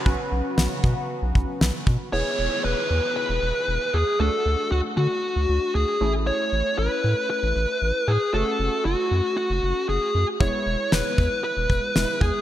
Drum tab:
SD |--o---o-|--------|--------|--------|
BD |o--o-o-o|--------|--------|--------|

SD |--------|--o---o-|
BD |--------|o--o-o-o|